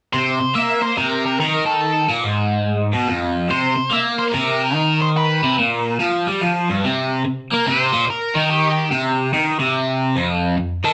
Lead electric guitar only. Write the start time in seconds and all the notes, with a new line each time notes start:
0.13 C5
0.55 E5
0.82 C5
0.98 A#4
1.26 A#4
1.40 A#4
1.66 A4
3.51 C5
3.93 E5
4.19 C5
4.34 A#4
5.02 C5
5.17 B4
7.54 A#4
7.67 C5
8.10 A#4
8.50 G4
10.85 A4